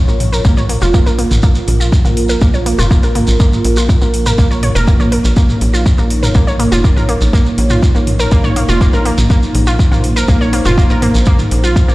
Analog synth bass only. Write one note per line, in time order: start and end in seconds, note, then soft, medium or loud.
0.08 0.40 A#1 medium
0.45 0.77 A#1 medium
0.82 1.01 F1 medium
1.06 1.25 A#1 loud
1.31 1.40 A#1 medium
1.68 2.00 A#1 loud
2.05 2.37 A#1 medium
2.42 2.74 A#1 medium
2.79 2.98 F1 loud
3.03 3.22 A#1 loud
3.28 3.37 A#1 medium
3.65 3.97 A#1 loud
4.01 4.34 A#1 medium
4.38 4.71 A#1 medium
4.75 4.94 F1 medium
5.00 5.19 A#1 medium
5.24 5.34 A#1 medium
5.61 5.94 A#1 loud
5.98 6.31 A#1 loud
6.35 6.68 A#1 medium
6.72 6.91 F1 medium
6.97 7.16 A#1 loud
7.21 7.31 A#1 medium
7.58 7.91 A#1 loud
7.95 8.27 A#1 medium
8.32 8.64 A#1 medium
8.69 8.88 F1 medium
8.93 9.12 A#1 medium
9.18 9.27 A#1 medium
9.55 9.87 A#1 loud
9.92 10.24 A#1 medium
10.28 10.61 A#1 medium
10.65 10.84 F1 medium
10.90 11.09 A#1 loud
11.15 11.24 A#1 medium
11.51 11.84 A#1 loud
11.88 11.95 A#1 medium